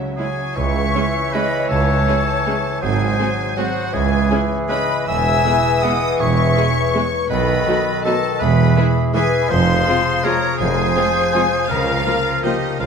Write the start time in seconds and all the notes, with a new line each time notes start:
Already playing: C#3 F#3 G#3 C#4 E4 G#4 C#5 E5
0.00 E5
0.08 G#5
0.17 G#3 E4 G#4 C#5 E5 G#5
0.28 G#4
0.38 E4
0.48 C#4
0.56 C#2 C#3 E3 C#5 E5 C#6
0.76 G#3
0.95 G#3 C#4 E4 G#4
1.33 G#3 C#4 E4 G#4 B4 D#5 B5
1.52 C#5
1.69 C#2 C#3 A4 C#5 A5
1.89 G#3
2.07 G#3 C#4 E4 G#4
2.28 C#5
2.45 G#3 C#4 E4 G#4
2.65 C#5
2.81 G#1 G#2 F#3 G#4 C5 G#5
3.01 D#3
3.19 F#3 G#3 C4 F#4 G#4
3.39 G#4
3.56 F#3 G#3 C4 F#4 G#4 C5 F#5
3.77 G#4
3.93 C#2 C#3 E3 G#4 C#5 G#5
4.12 G#3
4.30 E3 G#3 C#4 E4 G#4
4.50 C#5
4.69 E3 G#3 C#4 E4 G#4 B4 D#5 B5
4.89 C#5
5.07 E1 E2 E3 G#4 E5 G#5 E6
5.25 G#3
5.44 G#3 B3 E4 G#4
5.64 B4
5.83 G#3 B3 E4 G#4 D#5 F#5 D#6
6.01 B4
6.19 E1 E2 E3 C#5 E5 C#6
6.37 G#3
6.55 G#3 B3 E4 G#4
6.75 B4
6.94 G#3 B3 E4 G#4
7.12 B4
7.29 B1 B2 D#3 A4 B4 D#5 B5
7.48 F#3
7.66 F#3 A3 B3 D#4 A4
7.86 A4
8.04 D#3 F#3 A3 B3 D#4 A4 B4 D#5 A5
8.23 A4
8.39 E1 E2 E3 G#4 B4 E5 B5
8.57 B2
8.76 E3 G#3 B3 E4 G#4
8.95 G#4
9.14 E3 G#3 E4 G#4 B4 G#5
9.33 G#4
9.49 F1 F2 F3 G#4 C5 F5 C6
9.69 C3
9.87 F3 G#3 C4 F4
10.24 F3 G#3 C4 F4 A#4 C#5 F5 A#5
10.43 F4
10.59 F1 F2 F3 G#4 C5 G#5
10.78 C3
10.96 F3 G#3 C4 F4
11.16 G#4
11.34 F3 G#3 C4 F4 F5
11.52 F4
11.68 C#2 C#3 F3 F4 A#4 F5
11.87 C#4
12.06 F3 A#3 F4
12.25 A#4
12.43 F3 A#3 D#4 F4 G4 D#5 F5
12.62 F4
12.79 C#2 C#3 F3 F4 A#4 F5